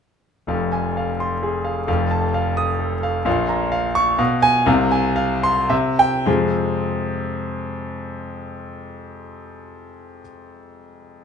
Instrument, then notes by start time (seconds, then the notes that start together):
grand piano
0.47 F1 F2 F5
0.72 G#5
0.97 F5
1.20 C6
1.43 G#4
1.65 F5
1.87 F1 F2 F5
2.11 A5
2.34 F5
2.57 D#6
2.80 A4
3.03 F5
3.25 A#1 A#2 F5
3.49 A#5
3.72 F5
3.95 C#6
4.18 B2 F5
4.42 G#5
4.66 C2 C3 F5
4.91 G#5
5.16 F5
5.43 C6
5.70 C3 E5
5.99 G5
6.26 F2 C3 G#3 C4 F4 G#4